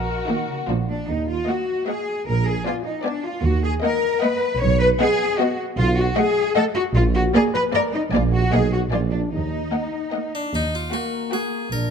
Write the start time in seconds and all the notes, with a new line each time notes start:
Already playing: A#1 A#2 F#4 A#4
0.27 D#3 A#3 D#4 F#4
0.49 C#3
0.67 A#1 B2 F3 A#3 D4 F4
0.88 A#2 D4
1.08 D#2 D#4
1.28 F4
1.47 A#3 F#4 D#5 F#5
1.86 A#3 G#4 D#5 F#5
2.26 A#1 A#4
2.46 G#4
2.65 B3 F4 D5 G#5
2.85 D#4
3.04 B3 D4 D5 G#5
3.24 F4
3.43 D#2 F#4
3.62 G#4
3.82 A#3 A#4 D#5 F#5
4.22 A#3 B4 D#5 F#5
4.60 B1 C#5
4.80 B4
4.99 B3 G#4 D#5 F#5
5.39 B3 F#4 D#5 F#5
5.77 B1 F4
5.98 F#4
6.17 A3 G#4 D#5 F#5
6.55 A3 A4 D#5 F#5
6.76 F#4
6.95 A#1 F4
7.15 F#4
7.34 A#3 G#4 D5 A#5
7.54 B4
7.74 A#3 A#4 D5 A#5
7.94 D#4
8.12 A#1 A#3 F4 D5 G#5
8.32 F#4
8.51 B1 A#3 G#4 D#5 F#5
8.72 F#4
8.91 A#1 A#3 F4 D5 G#5
9.11 D4
9.32 D#2 D#4
9.72 A#3 D#5 F#5
10.12 A#3 D#5 F#5
10.35 D4
10.54 D#2 D#4, triangle
10.75 F4
10.92 A#3 F#4 F#5
11.32 A#3 F#4 G#4 F#5
11.72 A#1 A#2 D4 A#4